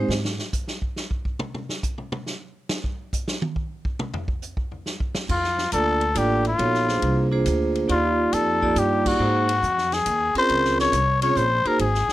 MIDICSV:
0, 0, Header, 1, 6, 480
1, 0, Start_track
1, 0, Key_signature, -2, "major"
1, 0, Tempo, 433526
1, 102, Time_signature, 3, 2, 24, 8
1, 13428, End_track
2, 0, Start_track
2, 0, Title_t, "Muted trumpet"
2, 0, Program_c, 0, 59
2, 5875, Note_on_c, 0, 65, 83
2, 6314, Note_off_c, 0, 65, 0
2, 6345, Note_on_c, 0, 69, 93
2, 6841, Note_on_c, 0, 67, 84
2, 6857, Note_off_c, 0, 69, 0
2, 7154, Note_off_c, 0, 67, 0
2, 7167, Note_on_c, 0, 65, 88
2, 8073, Note_off_c, 0, 65, 0
2, 8753, Note_on_c, 0, 65, 91
2, 9228, Note_on_c, 0, 69, 90
2, 9245, Note_off_c, 0, 65, 0
2, 9727, Note_on_c, 0, 67, 84
2, 9744, Note_off_c, 0, 69, 0
2, 10046, Note_on_c, 0, 66, 92
2, 10062, Note_off_c, 0, 67, 0
2, 10997, Note_on_c, 0, 68, 92
2, 11013, Note_off_c, 0, 66, 0
2, 11471, Note_off_c, 0, 68, 0
2, 11492, Note_on_c, 0, 72, 98
2, 11925, Note_off_c, 0, 72, 0
2, 11961, Note_on_c, 0, 73, 90
2, 12399, Note_off_c, 0, 73, 0
2, 12424, Note_on_c, 0, 73, 92
2, 12593, Note_on_c, 0, 72, 100
2, 12609, Note_off_c, 0, 73, 0
2, 12924, Note_on_c, 0, 70, 99
2, 12941, Note_off_c, 0, 72, 0
2, 13065, Note_off_c, 0, 70, 0
2, 13071, Note_on_c, 0, 68, 86
2, 13428, Note_off_c, 0, 68, 0
2, 13428, End_track
3, 0, Start_track
3, 0, Title_t, "Vibraphone"
3, 0, Program_c, 1, 11
3, 6338, Note_on_c, 1, 58, 57
3, 6342, Note_on_c, 1, 62, 47
3, 6344, Note_on_c, 1, 65, 49
3, 6347, Note_on_c, 1, 69, 49
3, 6347, Note_on_c, 1, 74, 59
3, 6630, Note_off_c, 1, 58, 0
3, 6632, Note_off_c, 1, 62, 0
3, 6633, Note_off_c, 1, 65, 0
3, 6635, Note_off_c, 1, 69, 0
3, 6635, Note_off_c, 1, 74, 0
3, 6809, Note_on_c, 1, 58, 64
3, 6812, Note_on_c, 1, 62, 56
3, 6817, Note_on_c, 1, 65, 60
3, 6821, Note_on_c, 1, 69, 54
3, 6823, Note_on_c, 1, 74, 77
3, 7106, Note_off_c, 1, 58, 0
3, 7108, Note_off_c, 1, 62, 0
3, 7110, Note_off_c, 1, 65, 0
3, 7112, Note_off_c, 1, 69, 0
3, 7113, Note_off_c, 1, 74, 0
3, 7285, Note_on_c, 1, 59, 60
3, 7287, Note_on_c, 1, 63, 48
3, 7291, Note_on_c, 1, 66, 54
3, 7292, Note_on_c, 1, 69, 50
3, 7296, Note_on_c, 1, 73, 69
3, 7584, Note_off_c, 1, 59, 0
3, 7586, Note_off_c, 1, 63, 0
3, 7587, Note_off_c, 1, 66, 0
3, 7588, Note_off_c, 1, 69, 0
3, 7590, Note_off_c, 1, 73, 0
3, 7614, Note_on_c, 1, 58, 53
3, 7616, Note_on_c, 1, 65, 48
3, 7617, Note_on_c, 1, 62, 51
3, 7623, Note_on_c, 1, 68, 53
3, 7626, Note_on_c, 1, 72, 58
3, 8035, Note_off_c, 1, 58, 0
3, 8036, Note_off_c, 1, 65, 0
3, 8037, Note_off_c, 1, 62, 0
3, 8040, Note_off_c, 1, 68, 0
3, 8041, Note_off_c, 1, 72, 0
3, 8096, Note_on_c, 1, 62, 58
3, 8100, Note_on_c, 1, 58, 57
3, 8103, Note_on_c, 1, 65, 61
3, 8108, Note_on_c, 1, 68, 67
3, 8110, Note_on_c, 1, 72, 72
3, 8706, Note_off_c, 1, 62, 0
3, 8709, Note_off_c, 1, 58, 0
3, 8710, Note_off_c, 1, 65, 0
3, 8712, Note_off_c, 1, 68, 0
3, 8714, Note_off_c, 1, 72, 0
3, 8723, Note_on_c, 1, 58, 60
3, 8731, Note_on_c, 1, 63, 57
3, 8735, Note_on_c, 1, 65, 56
3, 8735, Note_on_c, 1, 67, 62
3, 8738, Note_on_c, 1, 74, 71
3, 9472, Note_off_c, 1, 58, 0
3, 9476, Note_off_c, 1, 63, 0
3, 9478, Note_off_c, 1, 65, 0
3, 9478, Note_off_c, 1, 67, 0
3, 9480, Note_off_c, 1, 74, 0
3, 9541, Note_on_c, 1, 63, 57
3, 9543, Note_on_c, 1, 58, 67
3, 9545, Note_on_c, 1, 65, 60
3, 9547, Note_on_c, 1, 67, 66
3, 9550, Note_on_c, 1, 74, 82
3, 10149, Note_off_c, 1, 63, 0
3, 10150, Note_off_c, 1, 58, 0
3, 10151, Note_off_c, 1, 65, 0
3, 10152, Note_off_c, 1, 67, 0
3, 10154, Note_off_c, 1, 74, 0
3, 10177, Note_on_c, 1, 58, 58
3, 10181, Note_on_c, 1, 63, 59
3, 10185, Note_on_c, 1, 68, 54
3, 10186, Note_on_c, 1, 66, 56
3, 10189, Note_on_c, 1, 72, 73
3, 10471, Note_off_c, 1, 58, 0
3, 10473, Note_off_c, 1, 63, 0
3, 10475, Note_off_c, 1, 68, 0
3, 10476, Note_off_c, 1, 66, 0
3, 10477, Note_off_c, 1, 72, 0
3, 11462, Note_on_c, 1, 60, 73
3, 11469, Note_on_c, 1, 68, 64
3, 11470, Note_on_c, 1, 61, 62
3, 11470, Note_on_c, 1, 65, 62
3, 11478, Note_on_c, 1, 70, 77
3, 12067, Note_off_c, 1, 60, 0
3, 12071, Note_off_c, 1, 65, 0
3, 12071, Note_off_c, 1, 68, 0
3, 12072, Note_off_c, 1, 61, 0
3, 12076, Note_off_c, 1, 70, 0
3, 12418, Note_on_c, 1, 60, 60
3, 12422, Note_on_c, 1, 61, 56
3, 12427, Note_on_c, 1, 65, 67
3, 12432, Note_on_c, 1, 68, 59
3, 12437, Note_on_c, 1, 73, 73
3, 12561, Note_off_c, 1, 60, 0
3, 12563, Note_off_c, 1, 61, 0
3, 12566, Note_off_c, 1, 65, 0
3, 12568, Note_off_c, 1, 68, 0
3, 12571, Note_off_c, 1, 73, 0
3, 12899, Note_on_c, 1, 58, 66
3, 12899, Note_on_c, 1, 63, 65
3, 12905, Note_on_c, 1, 66, 61
3, 12908, Note_on_c, 1, 68, 64
3, 12913, Note_on_c, 1, 72, 81
3, 13041, Note_off_c, 1, 58, 0
3, 13041, Note_off_c, 1, 63, 0
3, 13044, Note_off_c, 1, 66, 0
3, 13045, Note_off_c, 1, 68, 0
3, 13048, Note_off_c, 1, 72, 0
3, 13428, End_track
4, 0, Start_track
4, 0, Title_t, "Upright bass"
4, 0, Program_c, 2, 32
4, 94, Note_on_c, 2, 44, 78
4, 411, Note_off_c, 2, 44, 0
4, 5857, Note_on_c, 2, 41, 80
4, 6324, Note_off_c, 2, 41, 0
4, 6338, Note_on_c, 2, 38, 82
4, 6805, Note_off_c, 2, 38, 0
4, 6811, Note_on_c, 2, 33, 87
4, 7282, Note_off_c, 2, 33, 0
4, 7293, Note_on_c, 2, 34, 79
4, 7763, Note_off_c, 2, 34, 0
4, 7772, Note_on_c, 2, 36, 85
4, 8243, Note_off_c, 2, 36, 0
4, 8261, Note_on_c, 2, 38, 95
4, 8728, Note_off_c, 2, 38, 0
4, 8738, Note_on_c, 2, 39, 83
4, 9206, Note_off_c, 2, 39, 0
4, 9220, Note_on_c, 2, 41, 87
4, 9687, Note_off_c, 2, 41, 0
4, 9694, Note_on_c, 2, 43, 91
4, 10164, Note_off_c, 2, 43, 0
4, 10179, Note_on_c, 2, 44, 84
4, 10646, Note_off_c, 2, 44, 0
4, 10656, Note_on_c, 2, 41, 88
4, 11124, Note_off_c, 2, 41, 0
4, 11138, Note_on_c, 2, 39, 80
4, 11440, Note_off_c, 2, 39, 0
4, 11616, Note_on_c, 2, 37, 72
4, 12083, Note_off_c, 2, 37, 0
4, 12093, Note_on_c, 2, 36, 80
4, 12561, Note_off_c, 2, 36, 0
4, 12572, Note_on_c, 2, 34, 89
4, 12876, Note_off_c, 2, 34, 0
4, 13058, Note_on_c, 2, 32, 83
4, 13358, Note_off_c, 2, 32, 0
4, 13428, End_track
5, 0, Start_track
5, 0, Title_t, "Muted upright bass strokes"
5, 11455, Note_on_c, 9, 29, 40
5, 11565, Note_off_c, 9, 29, 0
5, 12899, Note_on_c, 9, 29, 39
5, 13009, Note_off_c, 9, 29, 0
5, 13375, Note_on_c, 9, 29, 40
5, 13428, Note_off_c, 9, 29, 0
5, 13428, End_track
6, 0, Start_track
6, 0, Title_t, "Drums"
6, 115, Note_on_c, 9, 38, 94
6, 226, Note_off_c, 9, 38, 0
6, 274, Note_on_c, 9, 38, 75
6, 385, Note_off_c, 9, 38, 0
6, 429, Note_on_c, 9, 38, 41
6, 540, Note_off_c, 9, 38, 0
6, 585, Note_on_c, 9, 44, 56
6, 589, Note_on_c, 9, 36, 77
6, 695, Note_off_c, 9, 44, 0
6, 700, Note_off_c, 9, 36, 0
6, 749, Note_on_c, 9, 38, 40
6, 860, Note_off_c, 9, 38, 0
6, 908, Note_on_c, 9, 36, 61
6, 1019, Note_off_c, 9, 36, 0
6, 1067, Note_on_c, 9, 38, 43
6, 1178, Note_off_c, 9, 38, 0
6, 1227, Note_on_c, 9, 36, 68
6, 1337, Note_off_c, 9, 36, 0
6, 1386, Note_on_c, 9, 36, 62
6, 1497, Note_off_c, 9, 36, 0
6, 1544, Note_on_c, 9, 47, 89
6, 1655, Note_off_c, 9, 47, 0
6, 1711, Note_on_c, 9, 47, 76
6, 1822, Note_off_c, 9, 47, 0
6, 1875, Note_on_c, 9, 38, 49
6, 1986, Note_off_c, 9, 38, 0
6, 2027, Note_on_c, 9, 44, 50
6, 2030, Note_on_c, 9, 36, 76
6, 2138, Note_off_c, 9, 44, 0
6, 2141, Note_off_c, 9, 36, 0
6, 2192, Note_on_c, 9, 47, 45
6, 2303, Note_off_c, 9, 47, 0
6, 2350, Note_on_c, 9, 47, 93
6, 2460, Note_off_c, 9, 47, 0
6, 2507, Note_on_c, 9, 38, 47
6, 2618, Note_off_c, 9, 38, 0
6, 2983, Note_on_c, 9, 38, 100
6, 3094, Note_off_c, 9, 38, 0
6, 3146, Note_on_c, 9, 36, 68
6, 3256, Note_off_c, 9, 36, 0
6, 3465, Note_on_c, 9, 36, 72
6, 3465, Note_on_c, 9, 44, 61
6, 3575, Note_off_c, 9, 44, 0
6, 3576, Note_off_c, 9, 36, 0
6, 3628, Note_on_c, 9, 38, 80
6, 3739, Note_off_c, 9, 38, 0
6, 3786, Note_on_c, 9, 48, 84
6, 3896, Note_off_c, 9, 48, 0
6, 3942, Note_on_c, 9, 36, 68
6, 4053, Note_off_c, 9, 36, 0
6, 4262, Note_on_c, 9, 36, 73
6, 4373, Note_off_c, 9, 36, 0
6, 4422, Note_on_c, 9, 47, 95
6, 4533, Note_off_c, 9, 47, 0
6, 4579, Note_on_c, 9, 43, 83
6, 4690, Note_off_c, 9, 43, 0
6, 4739, Note_on_c, 9, 36, 74
6, 4849, Note_off_c, 9, 36, 0
6, 4893, Note_on_c, 9, 44, 51
6, 5004, Note_off_c, 9, 44, 0
6, 5060, Note_on_c, 9, 36, 67
6, 5170, Note_off_c, 9, 36, 0
6, 5221, Note_on_c, 9, 43, 32
6, 5331, Note_off_c, 9, 43, 0
6, 5380, Note_on_c, 9, 38, 43
6, 5491, Note_off_c, 9, 38, 0
6, 5540, Note_on_c, 9, 36, 69
6, 5651, Note_off_c, 9, 36, 0
6, 5698, Note_on_c, 9, 38, 93
6, 5808, Note_off_c, 9, 38, 0
6, 5860, Note_on_c, 9, 36, 68
6, 5860, Note_on_c, 9, 49, 65
6, 5971, Note_off_c, 9, 36, 0
6, 5971, Note_off_c, 9, 49, 0
6, 6020, Note_on_c, 9, 38, 25
6, 6131, Note_off_c, 9, 38, 0
6, 6178, Note_on_c, 9, 38, 41
6, 6289, Note_off_c, 9, 38, 0
6, 6330, Note_on_c, 9, 44, 61
6, 6330, Note_on_c, 9, 51, 59
6, 6441, Note_off_c, 9, 44, 0
6, 6441, Note_off_c, 9, 51, 0
6, 6654, Note_on_c, 9, 51, 41
6, 6765, Note_off_c, 9, 51, 0
6, 6814, Note_on_c, 9, 44, 42
6, 6814, Note_on_c, 9, 51, 66
6, 6925, Note_off_c, 9, 44, 0
6, 6925, Note_off_c, 9, 51, 0
6, 7138, Note_on_c, 9, 51, 38
6, 7249, Note_off_c, 9, 51, 0
6, 7298, Note_on_c, 9, 51, 55
6, 7409, Note_off_c, 9, 51, 0
6, 7463, Note_on_c, 9, 38, 21
6, 7573, Note_off_c, 9, 38, 0
6, 7622, Note_on_c, 9, 38, 40
6, 7733, Note_off_c, 9, 38, 0
6, 7774, Note_on_c, 9, 51, 59
6, 7885, Note_off_c, 9, 51, 0
6, 8255, Note_on_c, 9, 44, 49
6, 8255, Note_on_c, 9, 51, 53
6, 8366, Note_off_c, 9, 44, 0
6, 8366, Note_off_c, 9, 51, 0
6, 8585, Note_on_c, 9, 51, 39
6, 8695, Note_off_c, 9, 51, 0
6, 8738, Note_on_c, 9, 51, 54
6, 8849, Note_off_c, 9, 51, 0
6, 9218, Note_on_c, 9, 44, 51
6, 9218, Note_on_c, 9, 51, 64
6, 9329, Note_off_c, 9, 44, 0
6, 9329, Note_off_c, 9, 51, 0
6, 9548, Note_on_c, 9, 36, 44
6, 9659, Note_off_c, 9, 36, 0
6, 9700, Note_on_c, 9, 44, 57
6, 9700, Note_on_c, 9, 51, 58
6, 9811, Note_off_c, 9, 44, 0
6, 9811, Note_off_c, 9, 51, 0
6, 10029, Note_on_c, 9, 36, 70
6, 10029, Note_on_c, 9, 49, 69
6, 10140, Note_off_c, 9, 36, 0
6, 10140, Note_off_c, 9, 49, 0
6, 10505, Note_on_c, 9, 51, 61
6, 10616, Note_off_c, 9, 51, 0
6, 10661, Note_on_c, 9, 44, 50
6, 10772, Note_off_c, 9, 44, 0
6, 10826, Note_on_c, 9, 38, 26
6, 10937, Note_off_c, 9, 38, 0
6, 10984, Note_on_c, 9, 51, 37
6, 10987, Note_on_c, 9, 38, 42
6, 11095, Note_off_c, 9, 51, 0
6, 11098, Note_off_c, 9, 38, 0
6, 11135, Note_on_c, 9, 44, 54
6, 11135, Note_on_c, 9, 51, 65
6, 11246, Note_off_c, 9, 44, 0
6, 11246, Note_off_c, 9, 51, 0
6, 11461, Note_on_c, 9, 51, 44
6, 11572, Note_off_c, 9, 51, 0
6, 11619, Note_on_c, 9, 51, 57
6, 11730, Note_off_c, 9, 51, 0
6, 11787, Note_on_c, 9, 38, 28
6, 11898, Note_off_c, 9, 38, 0
6, 11949, Note_on_c, 9, 38, 44
6, 12060, Note_off_c, 9, 38, 0
6, 12102, Note_on_c, 9, 44, 62
6, 12102, Note_on_c, 9, 51, 58
6, 12212, Note_off_c, 9, 44, 0
6, 12212, Note_off_c, 9, 51, 0
6, 12422, Note_on_c, 9, 51, 61
6, 12533, Note_off_c, 9, 51, 0
6, 12580, Note_on_c, 9, 44, 59
6, 12691, Note_off_c, 9, 44, 0
6, 12903, Note_on_c, 9, 51, 38
6, 13014, Note_off_c, 9, 51, 0
6, 13057, Note_on_c, 9, 51, 64
6, 13168, Note_off_c, 9, 51, 0
6, 13226, Note_on_c, 9, 38, 28
6, 13336, Note_off_c, 9, 38, 0
6, 13382, Note_on_c, 9, 38, 42
6, 13428, Note_off_c, 9, 38, 0
6, 13428, End_track
0, 0, End_of_file